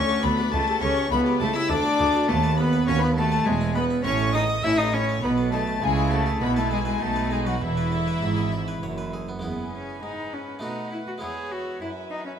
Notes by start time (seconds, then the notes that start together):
Already playing: D2 C#4 C#5 C#6
0.09 F#4 D5
0.23 D2 B3 A4 B4 B5
0.38 D4 F#4
0.52 C#2 A3 A4 A5
0.68 G4 A4
0.82 C#2 C#4 G4 A4 C#5 C#6
0.97 G4 A4
1.11 C#2 B3 E4 A4 B4 B5
1.25 G4
1.40 C#2 A3 E4 A4 A5
1.55 E4 G4 A4 E5 E6
1.70 D2 D4 A4 D5 D6
1.85 F#4 A4
1.99 D2 G#4 A4
2.14 F#4 A4
2.28 D#2 A3 B3 A4 A5
2.43 B4
2.58 B3 A4 B4 B5
2.73 B4
2.87 D#2 B3 C#4 F#4 C#5 C#6
3.01 B3 B4 B5
3.16 A3 B3 F#4 A4 A5
3.32 B4
3.45 E1 E2 G#3 B3 G#4 G#5
3.61 E5
3.75 B3 B4 D#5 B5
3.90 E5
4.04 A1 A2 C#4 C#5 C#6
4.20 A4
4.34 C#4 D#4 G#4 D#5 D#6
4.50 A4
4.63 A1 A2 C#4 E4 E5 E6
4.78 D#4 A4 D#5 D#6
4.93 C#4 E4 C#5 C#6
5.09 A4
5.23 B1 B2 B3 D#4 B4 B5
5.38 A4
5.52 A3 D#4 G#4 A4 A5
5.67 A4
5.82 C#2 C#3 G#3 E4 G#4 G#5
5.97 G#4
6.11 A3 F#4 A4 A5
6.26 G#4
6.41 B1 B2 B3 E4 B4 B5
6.56 A3 A4 B4 A5
6.71 G#3 G#4 A4 G#5
6.85 G#3 G#4 B4 G#5
7.00 B1 B2 A3 D#4 A4 A5
7.16 B4
7.31 G#3 G#4 A4 G#5
7.46 F#3 F#4 B4 F#5
7.61 E1 E2 E3 E4 E5
7.77 B4
7.92 A4
8.08 B4
8.22 G#1 G#2 E4
8.37 G#4
8.52 E4
8.68 B4
8.83 F#1 F#2 C#5
8.98 B4
9.14 G#4
9.29 B3
9.39 E2 G#3 B3 E4 G#4 G#5 B5
9.44 E2 B3
9.73 C#4
10.03 G#2 D#4 B4
10.33 C#4
10.59 B2 A3 B3 D#4 F#4 B4 F#5
10.63 B2
10.92 E4
11.08 F#4
11.18 E2 G#3 B3 E4 G#4 E5
11.22 E2 C#5 E5
11.52 F#4
11.81 F#2 E4 B4 E5 G#5
12.11 D#4
12.26 C#4